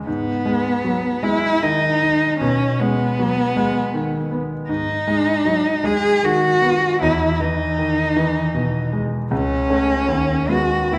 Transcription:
0.07 grand piano G#2, cello B3
0.46 grand piano G#3
0.84 grand piano F#3
1.23 grand piano G#3, cello E4
1.62 grand piano D#3, cello D#4
2.02 grand piano D#4
2.40 grand piano B2, cello C#4
2.80 grand piano G#3, cello B3
3.19 grand piano F#3
3.56 grand piano G#3
3.94 grand piano D#3
4.31 grand piano B3
4.69 grand piano G#2, cello D#4
5.07 grand piano G#3
5.45 grand piano F#3
5.84 grand piano G#3, cello G#4
6.23 grand piano D#3, cello F#4
6.62 grand piano B3
7.01 grand piano E2, cello E4
7.40 grand piano E3, cello D#4
7.78 grand piano D#3
8.16 grand piano E3
8.54 grand piano B2
8.93 grand piano G#3
9.31 grand piano C#2, cello C#4
9.70 grand piano A3 C#4
10.08 grand piano D#2
10.49 grand piano G#3 B3, cello F#4
10.91 grand piano D#2, cello E4

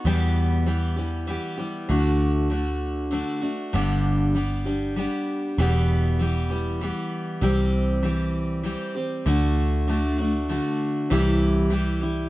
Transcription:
0.05 steel-string acoustic guitar E2 B2 E3 G3 B3 G4, picked electric bass E2
0.66 steel-string acoustic guitar E3 G3 B3 G4
0.96 steel-string acoustic guitar E3 G3 B3 G4
1.27 steel-string acoustic guitar E3 G3 B3 G4
1.58 steel-string acoustic guitar E3 G3 B3 G4
1.89 picked electric bass D2, steel-string acoustic guitar D3 A3 D4 F#4
2.50 steel-string acoustic guitar D3 A3 D4 F#4
3.11 steel-string acoustic guitar D3 A3 D4 F#4
3.41 steel-string acoustic guitar A3 D4 F#4
3.73 picked electric bass G1, steel-string acoustic guitar G2 D3 G3 B3 D4 G4
4.35 steel-string acoustic guitar G3 B3 D4 G4
4.65 steel-string acoustic guitar G3 B3 D4 G4
4.96 steel-string acoustic guitar G3 B3 D4 G4
5.58 picked electric bass E1, steel-string acoustic guitar E2 B2 E3 G3 B3 G4
6.19 steel-string acoustic guitar E3 G3 B3 G4
6.50 steel-string acoustic guitar E3 G3 B3 G4
6.81 steel-string acoustic guitar E3 G3 B3 G4
7.41 picked electric bass C2, steel-string acoustic guitar C3 E3 G3 C4 G4
8.03 steel-string acoustic guitar E3 G3 C4 G4
8.63 steel-string acoustic guitar E3 G3 C4 G4
8.95 steel-string acoustic guitar G3 C4 G4
9.26 picked electric bass D2, steel-string acoustic guitar D3 A3 D4 F#4
9.88 steel-string acoustic guitar D3 A3 D4 F#4
10.18 steel-string acoustic guitar A3 D4 F#4
10.49 steel-string acoustic guitar D3 A3 D4 F#4
11.10 picked electric bass C2, steel-string acoustic guitar C3 E3 G3 E4 G4
11.70 steel-string acoustic guitar E3 G3 E4 G4
12.01 steel-string acoustic guitar G3 E4 G4

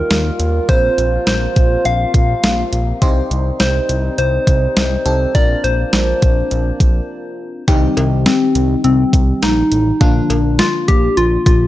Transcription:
Already playing: french horn section D#3 G3 A#3 F4, fm electric piano D#4 F4 G4 A#4, soft synth lead A#4
0.10 analog synth bass D#2, snare, closed hi-hat
0.40 analog synth bass D#2, closed hi-hat
0.69 analog synth bass A#1, french horn section C3 F3 A#3, fm electric piano C4 F4 A#4 C5, soft synth lead C5, kick, closed hi-hat
0.98 analog synth bass A#1, closed hi-hat
1.27 analog synth bass A#1, soft synth lead C5, snare, closed hi-hat
1.56 analog synth bass A#1, kick, closed hi-hat
1.85 analog synth bass A#1, soft synth lead F5, closed hi-hat
2.14 analog synth bass A#1, kick, closed hi-hat
2.43 analog synth bass A#1, snare, closed hi-hat
2.73 analog synth bass A#1, closed hi-hat
3.02 analog synth bass C2, french horn section D#3 G3 D#4, fm electric piano C4 D#4 G4 C5, kick, closed hi-hat
3.31 analog synth bass C2, closed hi-hat
3.60 analog synth bass C2, soft synth lead C5, snare, closed hi-hat
3.89 analog synth bass C2, closed hi-hat
4.18 analog synth bass C2, soft synth lead C5, closed hi-hat
4.47 analog synth bass C2, kick, closed hi-hat
4.77 analog synth bass C2, snare, closed hi-hat
5.06 analog synth bass C2, fm electric piano C4 D#4 G4 A4, closed hi-hat
5.35 analog synth bass A#1, french horn section F3 A#3 D4, fm electric piano C4 D4 F4 A#4, soft synth lead D5, kick, closed hi-hat
5.64 analog synth bass A#1, soft synth lead C5, closed hi-hat
5.93 analog synth bass A#1, snare, closed hi-hat
6.22 analog synth bass A#1, kick, closed hi-hat
6.51 analog synth bass A#1, closed hi-hat
6.80 analog synth bass A#1, kick, closed hi-hat
7.68 analog synth bass C2, fm electric piano D#3 G3 C4 D#4 G4, kick, closed hi-hat
7.97 analog synth bass C2, closed hi-hat, cowbell
8.26 soft synth lead C4, snare, closed hi-hat
8.55 analog synth bass C2, closed hi-hat
8.84 analog synth bass C2, soft synth lead C4, closed hi-hat
9.13 analog synth bass C2, kick, closed hi-hat
9.43 analog synth bass A#1, soft synth lead D#4, snare, closed hi-hat
9.72 analog synth bass A1, closed hi-hat
10.01 analog synth bass A#1, fm electric piano D3 F3 A#3 D4 F4, soft synth lead D4, kick, closed hi-hat
10.30 analog synth bass A#1, closed hi-hat, cowbell
10.59 soft synth lead F4, snare, closed hi-hat
10.88 analog synth bass A#1, soft synth lead G4, kick, closed hi-hat
11.17 analog synth bass A#1, soft synth lead F4, closed hi-hat
11.46 analog synth bass A#1, soft synth lead F4, kick, closed hi-hat

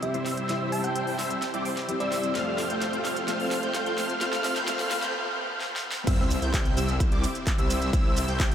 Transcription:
Already playing: grand piano C3 G3 C4 E4 G4, string section C3 G3 E4 C5, riser
0.02 grand piano C3 G3 C4 E4 G4, synth pluck E5, closed hi-hat
0.14 supersaw synth G3 C4 E4 C5 E5, analog synth lead E6, closed hi-hat
0.26 snare, open hi-hat
0.37 closed hi-hat
0.48 grand piano C3 G3 C4 E4 G4, supersaw synth G3 C4 E4 C5 E5, analog synth lead E6, snare, closed hi-hat
0.72 synth pluck A5, open hi-hat
0.84 supersaw synth G3 C4 E4 C5 G5, synth pluck G5, analog synth lead G6, closed hi-hat
0.96 closed hi-hat
1.07 open hi-hat
1.19 supersaw synth G3 C4 E4 C5 E5, analog synth lead E6, snare, open hi-hat
1.30 closed hi-hat
1.42 snare, closed hi-hat
1.54 supersaw synth G3 C4 E4 C5 D5, analog synth lead D6, closed hi-hat
1.65 open hi-hat
1.77 snare, closed hi-hat
1.88 grand piano C3 G3 C4 E4 G4, closed hi-hat
2.00 supersaw synth G3 C4 E4 C5 E5, synth pluck D5, analog synth lead E6, closed hi-hat
2.12 snare, open hi-hat
2.23 closed hi-hat
2.34 string section F2 F3 A4, grand piano A3 C4 F4 A4, supersaw synth A3 C4 F4 C5 F5, analog synth lead F6, snare, closed hi-hat
2.58 snare, open hi-hat
2.70 supersaw synth A3 C4 F4 C5 G5, analog synth lead G6, closed hi-hat
2.82 snare, closed hi-hat
2.93 closed hi-hat
3.05 supersaw synth A3 C4 F4 C5 F5, analog synth lead F6, snare, open hi-hat
3.16 closed hi-hat
3.27 grand piano A3 C4 F4 A4, supersaw synth A3 C4 F4 C5 F5, analog synth lead F6, snare, closed hi-hat
3.40 open hi-hat
3.51 snare, open hi-hat
3.63 supersaw synth A3 C4 F4 C5 G5, analog synth lead G6, closed hi-hat
3.75 snare, closed hi-hat
3.86 closed hi-hat
3.98 supersaw synth A3 C4 F4 C5 F5, analog synth lead F6, snare, open hi-hat
4.10 closed hi-hat
4.20 grand piano A3 C4 F4 A4, supersaw synth A3 C4 F4 C5 F5, string section B5, analog synth lead F6, snare, closed hi-hat
4.33 snare
4.44 snare, open hi-hat
4.56 supersaw synth A3 C4 F4 C5 G5, analog synth lead G6, snare, closed hi-hat
4.66 grand piano A3 C4 F4 A4, supersaw synth A3 C4 F4 C5 F5, analog synth lead F6, snare, closed hi-hat
4.79 snare, open hi-hat
4.91 snare, open hi-hat
5.02 supersaw synth A3 C4 F4 C5 G5, analog synth lead G6, snare, closed hi-hat
5.61 snare
5.76 snare
5.92 snare
6.07 detuned saw bass C2, string section C3 C4 E4 G4, supersaw synth G3 C4 E4 C5 E5, analog synth lead E6, kick, closed hi-hat, crash, sub drop, shaker
6.30 open hi-hat, shaker
6.42 detuned saw bass C2, supersaw synth G3 C4 E4 C5 G5, analog synth lead G6, closed hi-hat, shaker
6.54 kick, clap, closed hi-hat, shaker
6.65 closed hi-hat
6.77 detuned saw bass C2, supersaw synth G3 C4 E4 C5 E5, analog synth lead E6, open hi-hat, shaker
6.89 closed hi-hat, shaker
7.00 kick, closed hi-hat, shaker
7.12 detuned saw bass C2, supersaw synth G3 C4 E4 C5 D5, analog synth lead D6, closed hi-hat
7.23 open hi-hat, shaker
7.35 closed hi-hat, shaker
7.47 kick, clap, closed hi-hat, shaker
7.58 detuned saw bass C2, supersaw synth G3 C4 E4 C5 E5, analog synth lead E6, closed hi-hat, shaker
7.70 open hi-hat, shaker
7.82 closed hi-hat, shaker
7.93 detuned saw bass C2, supersaw synth G3 C4 E4 C5 E5, string section A4, analog synth lead E6, kick, closed hi-hat, shaker
8.17 open hi-hat, shaker
8.28 detuned saw bass C2, supersaw synth G3 C4 E4 C5 G5, analog synth lead G6, closed hi-hat, shaker
8.40 kick, clap, closed hi-hat, shaker
8.51 closed hi-hat

